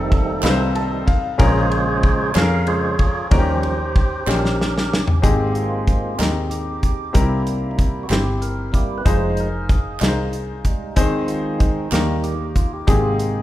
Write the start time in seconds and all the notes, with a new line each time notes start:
Already playing: F1 D#3 G3 A3 C4 D#4 F4 A4
0.12 kick, ride
0.43 C2 C4 D#4 F4 B4, snare, clap, ride
0.50 C5
0.75 D#3 G3 A3 A5, ride
1.07 F5, kick, ride
1.38 A#1 A#2 C#3 G#3 C#4 F4 G#4 A#4 C5 C#5, kick, ride
1.71 ride
2.03 kick, ride
2.35 F2 C#4 F4 G#4 A4 F5, snare, clap, ride
2.42 A#4
2.66 C#3 G#3 F4 G#4 C5 C#5, ride
2.99 kick, ride
3.31 D#2 D#3 F3 G3 C#4 D#4 F#4 G4 A#4 C5, kick, ride
3.38 G4
3.63 ride
3.96 kick, ride
4.27 A#1 F3 G3 C#4 D#4 G4 A#4 C5, snare, clap
4.45 snare
4.61 snare
4.78 snare
4.93 snare
5.08 floor tom
5.22 G#1 G#2 G#3 A#3 C4 D#4 G4 G#4, kick, closed hi-hat
5.47 G4
5.55 F4, closed hi-hat
5.87 kick, closed hi-hat
6.19 D#2 C4 D#4 G4 A#4, snare, clap, closed hi-hat
6.50 G4, closed hi-hat
6.83 kick, closed hi-hat
7.13 C2 C3 G3 A#3 C4 D#4 E4 G4 A#4, kick, closed hi-hat
7.20 E4
7.47 closed hi-hat
7.71 D#4
7.78 E4, kick, closed hi-hat
8.03 F#4
8.10 G1 C4 E4 G4 C5, snare, clap, closed hi-hat
8.42 A#4, closed hi-hat
8.72 G3 A#3 E4 G4, kick, closed hi-hat
8.98 B4
9.05 F1 F3 G#3 D#4 F4 G#4 C5, kick, closed hi-hat
9.37 A#4, closed hi-hat
9.69 G#4, kick, closed hi-hat
10.00 C2 D#4 F4 G#4 A#4, snare, clap, closed hi-hat
10.08 C5
10.33 closed hi-hat
10.65 G3 G#3 D#4, kick, closed hi-hat
10.96 D#2 D#3 G#3 C4 D#4 G#4 C5, kick, closed hi-hat
11.27 F4, closed hi-hat
11.59 D#4, kick, closed hi-hat
11.91 D#2 D#3 G3 A#3 D#4 G4 A#4, snare, clap, closed hi-hat
12.24 G4, closed hi-hat
12.55 F4, kick, closed hi-hat
12.73 G4
12.87 G#1 G#2 C3 G#3 A#3 C4 D#4 G4 G#4, kick, closed hi-hat
13.19 closed hi-hat